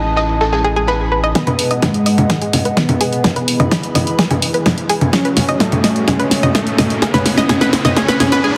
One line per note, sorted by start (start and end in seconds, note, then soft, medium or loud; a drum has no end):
0.00 1.33 A1 medium
0.00 1.32 C#4 medium
0.00 1.33 E4 medium
0.00 1.32 A5 medium
0.16 0.27 D#5 medium
0.16 snare loud
0.16 ride medium
0.29 ride soft
0.41 0.52 A4 medium
0.41 snare loud
0.41 ride medium
0.52 0.62 G#4 medium
0.52 snare loud
0.52 ride medium
0.64 0.74 G#4 loud
0.76 0.82 G#4 loud
0.87 0.98 B4 loud
0.87 snare loud
0.87 ride medium
1.12 1.21 B4 medium
1.24 1.33 D#5 loud
1.35 3.22 G#3 medium
1.35 1.84 B3 loud
1.35 5.09 G#4 medium
1.35 1.47 G#4 medium
1.35 5.10 B4 medium
1.35 3.22 D#5 medium
1.35 3.22 F#5 medium
1.35 kick loud
1.35 snare soft
1.35 closed hi-hat medium
1.35 riser medium
1.47 1.57 B4 loud
1.47 closed hi-hat soft
1.47 low conga medium
1.59 open hi-hat loud
1.71 1.76 D#5 loud
1.71 closed hi-hat soft
1.82 2.68 G#3 loud
1.82 1.88 D#4 medium
1.82 kick loud
1.82 snare medium
1.82 closed hi-hat medium
1.82 low conga medium
1.94 closed hi-hat soft
2.06 2.16 D#5 medium
2.06 open hi-hat loud
2.18 closed hi-hat soft
2.18 low conga medium
2.30 2.41 G#4 medium
2.30 kick loud
2.30 snare medium
2.30 closed hi-hat medium
2.42 2.51 G#4 medium
2.42 closed hi-hat soft
2.53 open hi-hat loud
2.53 low conga medium
2.65 2.75 B4 medium
2.65 closed hi-hat soft
2.77 3.62 B3 loud
2.77 2.83 D#4 medium
2.77 kick loud
2.77 snare medium
2.77 closed hi-hat medium
2.89 closed hi-hat soft
2.89 low conga medium
3.01 3.12 G#4 loud
3.01 open hi-hat loud
3.13 closed hi-hat soft
3.24 5.11 E3 medium
3.24 5.11 E4 medium
3.24 3.36 G#4 medium
3.24 5.11 B5 medium
3.24 kick loud
3.24 snare medium
3.24 closed hi-hat medium
3.24 low conga medium
3.36 3.46 B4 loud
3.36 closed hi-hat soft
3.48 open hi-hat loud
3.60 3.65 D#5 loud
3.60 closed hi-hat soft
3.60 low conga medium
3.71 3.77 D#4 medium
3.71 kick loud
3.71 snare medium
3.71 closed hi-hat medium
3.83 closed hi-hat soft
3.95 4.05 D#5 medium
3.95 open hi-hat loud
3.95 low conga medium
4.07 closed hi-hat soft
4.19 4.29 G#4 medium
4.19 kick loud
4.19 snare medium
4.19 closed hi-hat medium
4.31 4.40 G#4 medium
4.31 closed hi-hat soft
4.31 low conga medium
4.42 open hi-hat loud
4.54 4.64 B4 medium
4.54 closed hi-hat soft
4.66 4.72 D#4 medium
4.66 kick loud
4.66 snare medium
4.66 closed hi-hat medium
4.66 low conga medium
4.78 closed hi-hat soft
4.89 5.01 G#4 loud
4.89 open hi-hat loud
5.01 closed hi-hat soft
5.01 low conga medium
5.13 8.41 A3 medium
5.13 5.57 C#4 medium
5.13 8.41 C#4 medium
5.13 7.00 F#4 medium
5.13 5.25 G#4 medium
5.13 kick loud
5.13 snare medium
5.13 closed hi-hat medium
5.25 5.34 B4 medium
5.25 closed hi-hat soft
5.37 snare medium
5.37 open hi-hat loud
5.37 low conga medium
5.49 5.54 D#5 loud
5.49 closed hi-hat soft
5.60 6.06 A3 medium
5.60 5.66 D#4 medium
5.60 kick loud
5.60 snare medium
5.60 closed hi-hat medium
5.72 closed hi-hat soft
5.72 low conga medium
5.84 5.94 D#5 medium
5.84 snare medium
5.84 open hi-hat loud
5.96 closed hi-hat soft
6.08 6.51 C#4 loud
6.08 6.19 G#4 medium
6.08 kick loud
6.08 snare medium
6.08 closed hi-hat medium
6.08 low conga medium
6.20 6.29 B4 loud
6.20 closed hi-hat soft
6.31 snare medium
6.31 open hi-hat loud
6.43 6.49 D#5 loud
6.43 closed hi-hat soft
6.43 low conga medium
6.55 7.00 A3 medium
6.55 6.61 D#4 medium
6.55 kick loud
6.55 snare medium
6.55 closed hi-hat medium
6.67 closed hi-hat soft
6.78 6.88 D#5 medium
6.78 snare medium
6.78 open hi-hat loud
6.78 low conga medium
6.90 closed hi-hat soft
7.02 7.46 C#4 loud
7.02 8.43 E4 medium
7.02 7.13 G#4 medium
7.02 kick loud
7.02 snare medium
7.02 closed hi-hat medium
7.14 7.23 B4 loud
7.14 snare medium
7.14 closed hi-hat soft
7.14 low conga loud
7.26 snare loud
7.26 open hi-hat loud
7.38 7.43 D#5 loud
7.38 snare medium
7.38 closed hi-hat soft
7.49 7.93 C#4 loud
7.49 7.61 G#4 medium
7.49 kick loud
7.49 snare loud
7.49 closed hi-hat medium
7.49 low conga medium
7.61 7.71 B4 loud
7.61 snare medium
7.61 closed hi-hat soft
7.73 snare loud
7.73 open hi-hat loud
7.85 7.91 D#5 loud
7.85 snare medium
7.85 closed hi-hat soft
7.85 low conga medium
7.96 8.18 C#4 loud
7.96 8.08 G#4 medium
7.96 kick loud
7.96 snare loud
7.96 closed hi-hat medium
8.08 8.18 B4 loud
8.08 snare medium
8.08 closed hi-hat soft
8.20 8.42 C#4 loud
8.20 8.32 G#4 medium
8.20 snare loud
8.20 open hi-hat loud
8.20 low conga loud
8.32 8.42 B4 loud
8.32 snare medium
8.32 closed hi-hat soft
8.44 8.55 G#4 medium